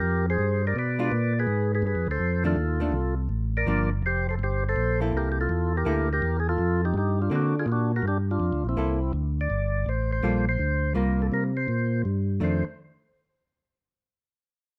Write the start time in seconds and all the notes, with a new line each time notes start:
Already playing: G4 A#4
0.02 F2
0.30 G#4 C5
0.39 G2
0.67 A#4 D5
0.76 B2 B4 D5
0.99 G#3 D4 F4
1.12 A#2
1.39 G#4 B4
1.47 G#2
1.75 G#4 B4
1.82 G2
1.86 G#4 B4
1.95 F2
2.07 D2
2.11 A4 C5
2.19 F2
2.44 D#3 A3 D4 F4 A4
2.56 D#2
2.80 D#3 A3 D4
2.92 C2
3.29 A1
3.57 A#4 D5
3.66 G1 F3 A#3 D4
4.02 F1 C5
4.07 G4
4.29 A4 C5
4.39 G1
4.43 G4 C5
4.69 A4 C5
4.76 A#1
5.01 A#3 E4 A4
5.13 C2 A#4
5.17 G4
5.32 G4
5.41 F4 A4
5.49 E2
5.77 G4 A#4
5.85 D2 A#3 E4 A4
6.13 G4 A#4
6.22 E2
6.40 G#4
6.49 F4 A4
6.58 F2
6.85 D#4 G4
6.94 G2 G4
6.98 D#4
7.22 D4 F4
7.30 D3 A#3 C4 F#4
7.35 D4 F#4
7.59 F4 G#4
7.66 A#2 F4
7.72 D4 F#4
7.96 F#4 A#4
8.02 G2
8.08 D4 G4
8.31 D4 F4
8.40 F2
8.53 D2
8.65 A#1
8.69 C4 E4
8.77 C2 A#3 E4 A4
9.13 D2
9.41 D5
9.50 G1
9.86 A1 C5
10.13 C5
10.23 A#1 G3 A#3 F4 A4
10.49 C5
10.59 D2
10.94 C2 G3 A#3 F4 A#4
11.22 A4
11.32 C3 A#4
11.57 C5
11.68 A#2
12.05 G2
12.40 F2 D#3 A3 D4 C5